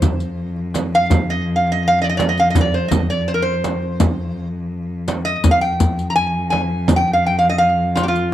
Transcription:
0.00 5.43 F2 medium
0.00 0.58 C5 medium
0.00 riq medium
0.00 darbuka dum medium
0.00 frame drum medium
0.20 riq soft
0.20 darbuka ka soft
0.56 darbuka ka soft
0.74 riq soft
0.74 darbuka tek medium
0.74 frame drum medium
0.93 1.31 F5 loud
0.93 darbuka ka soft
1.10 riq medium
1.10 darbuka dum medium
1.10 frame drum medium
1.30 1.56 D#5 medium
1.56 1.72 F5 medium
1.72 1.88 D#5 medium
1.88 2.01 F5 loud
2.02 2.07 D5 medium
2.02 2.05 D#5 medium
2.09 2.15 D#5 medium
2.17 2.27 D5 medium
2.17 riq soft
2.17 darbuka tek medium
2.17 frame drum medium
2.29 2.39 D#5 medium
2.37 2.49 F5 medium
2.37 riq soft
2.50 2.60 D#5 medium
2.55 riq medium
2.55 darbuka dum medium
2.55 frame drum medium
2.61 2.74 D5 medium
2.74 2.88 C5 medium
2.88 3.09 D#5 medium
2.88 riq medium
2.88 darbuka dum medium
2.88 frame drum medium
3.10 3.28 D5 medium
3.10 riq soft
3.10 darbuka ka soft
3.28 3.34 C5 medium
3.34 3.41 A#4 medium
3.42 4.47 C5 medium
3.47 darbuka ka soft
3.64 riq soft
3.64 darbuka tek medium
3.64 frame drum medium
3.83 darbuka ka soft
4.00 riq medium
4.00 frame drum medium
4.00 darbuka dum medium
5.08 riq soft
5.08 darbuka tek medium
5.08 frame drum medium
5.25 5.51 D#5 medium
5.25 riq soft
5.44 8.34 F2 medium
5.44 riq medium
5.44 darbuka dum medium
5.44 frame drum medium
5.51 5.61 F5 loud
5.61 6.10 G5 medium
5.80 riq medium
5.80 darbuka dum medium
5.99 riq soft
5.99 darbuka ka soft
6.10 6.15 A#5 medium
6.16 6.49 G#5 loud
6.35 darbuka ka soft
6.50 6.96 G#5 medium
6.50 darbuka tek medium
6.50 frame drum medium
6.70 darbuka ka soft
6.88 riq medium
6.88 frame drum medium
6.88 darbuka dum medium
6.96 7.13 G5 medium
7.13 7.26 F5 medium
7.26 7.38 G5 medium
7.38 7.49 F5 medium
7.49 7.58 D#5 medium
7.58 7.97 F5 medium
7.95 8.03 F4 medium
7.95 riq soft
7.95 darbuka tek medium
7.95 frame drum medium
8.03 8.08 G4 medium
8.08 8.34 F4 medium
8.15 riq soft
8.15 darbuka ka soft

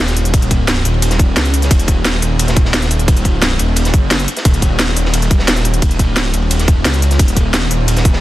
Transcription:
0.00 0.84 D#1 loud
0.08 snare medium
0.08 closed hi-hat soft
0.16 closed hi-hat medium
0.16 ride medium
0.25 closed hi-hat soft
0.33 kick loud
0.33 closed hi-hat loud
0.33 ride medium
0.42 closed hi-hat soft
0.42 ride soft
0.51 kick medium
0.51 closed hi-hat medium
0.51 ride medium
0.68 snare loud
0.68 closed hi-hat loud
0.68 ride medium
0.77 snare soft
0.85 1.35 D#1 loud
0.85 closed hi-hat medium
0.85 ride medium
0.94 ride soft
1.02 closed hi-hat loud
1.02 ride medium
1.11 snare soft
1.11 closed hi-hat soft
1.19 kick loud
1.19 closed hi-hat medium
1.19 ride medium
1.36 1.69 C#2 loud
1.36 snare loud
1.36 closed hi-hat loud
1.36 ride medium
1.45 closed hi-hat soft
1.45 ride soft
1.54 closed hi-hat medium
1.54 ride medium
1.62 snare soft
1.62 closed hi-hat soft
1.71 2.21 D#1 loud
1.71 kick loud
1.71 closed hi-hat loud
1.71 ride medium
1.71 ride loud
1.79 closed hi-hat soft
1.87 kick medium
1.87 closed hi-hat medium
1.87 ride medium
2.05 snare loud
2.05 closed hi-hat loud
2.05 ride medium
2.13 snare soft
2.22 2.72 D#1 loud
2.22 closed hi-hat medium
2.22 ride medium
2.39 closed hi-hat loud
2.39 ride medium
2.48 snare medium
2.48 closed hi-hat soft
2.56 kick loud
2.56 closed hi-hat medium
2.56 ride medium
2.65 snare medium
2.73 3.58 D#1 loud
2.73 snare loud
2.73 closed hi-hat medium
2.73 ride loud
2.73 ride medium
2.82 snare medium
2.82 closed hi-hat soft
2.91 closed hi-hat medium
2.91 ride medium
2.99 closed hi-hat soft
3.08 kick loud
3.08 closed hi-hat medium
3.08 ride medium
3.08 ride loud
3.17 closed hi-hat soft
3.17 ride soft
3.25 kick medium
3.25 closed hi-hat medium
3.25 ride medium
3.42 snare loud
3.42 closed hi-hat medium
3.42 ride medium
3.51 snare soft
3.59 3.92 D#1 loud
3.59 closed hi-hat medium
3.59 ride medium
3.68 ride soft
3.76 closed hi-hat medium
3.76 ride medium
3.85 snare soft
3.85 closed hi-hat soft
3.94 4.27 F#1 loud
3.94 kick loud
3.94 closed hi-hat medium
3.94 ride medium
4.11 snare loud
4.11 closed hi-hat medium
4.11 ride medium
4.11 ride loud
4.19 closed hi-hat soft
4.19 ride soft
4.28 closed hi-hat medium
4.28 ride medium
4.37 snare soft
4.37 closed hi-hat soft
4.45 4.95 D#1 loud
4.45 kick loud
4.45 closed hi-hat medium
4.45 ride medium
4.45 ride loud
4.54 closed hi-hat soft
4.62 kick medium
4.62 closed hi-hat medium
4.62 ride medium
4.79 snare loud
4.79 closed hi-hat medium
4.79 ride medium
4.88 snare medium
4.96 5.47 D#1 loud
4.96 closed hi-hat medium
4.96 ride medium
5.05 snare soft
5.13 closed hi-hat medium
5.13 ride loud
5.13 ride medium
5.22 closed hi-hat soft
5.31 kick loud
5.31 closed hi-hat medium
5.31 ride medium
5.39 snare medium
5.48 6.08 D#1 loud
5.48 snare loud
5.48 closed hi-hat medium
5.48 ride medium
5.56 snare medium
5.56 closed hi-hat soft
5.64 closed hi-hat medium
5.64 ride medium
5.74 closed hi-hat soft
5.82 kick loud
5.82 closed hi-hat medium
5.82 ride medium
5.91 closed hi-hat soft
5.91 ride soft
5.99 kick medium
5.99 closed hi-hat medium
5.99 ride medium
6.08 6.32 D1 loud
6.16 snare loud
6.16 closed hi-hat medium
6.16 ride medium
6.25 snare soft
6.34 6.84 D#1 loud
6.34 closed hi-hat medium
6.34 ride medium
6.42 ride soft
6.51 closed hi-hat medium
6.51 ride loud
6.51 ride medium
6.59 snare soft
6.59 closed hi-hat soft
6.67 kick loud
6.67 closed hi-hat medium
6.67 ride medium
6.85 7.18 C#2 loud
6.85 snare loud
6.85 closed hi-hat medium
6.85 ride medium
6.94 closed hi-hat soft
6.94 ride soft
7.02 closed hi-hat medium
7.02 ride medium
7.11 snare soft
7.11 closed hi-hat soft
7.19 7.69 D#1 loud
7.19 kick loud
7.19 closed hi-hat medium
7.19 ride medium
7.28 closed hi-hat soft
7.37 kick medium
7.37 closed hi-hat medium
7.37 ride medium
7.54 snare loud
7.54 closed hi-hat medium
7.54 ride medium
7.62 snare soft
7.71 8.21 D#1 loud
7.71 closed hi-hat medium
7.88 closed hi-hat medium
7.88 ride medium
7.97 snare medium
7.97 closed hi-hat soft
8.05 kick loud
8.05 closed hi-hat medium
8.05 ride medium
8.13 snare medium

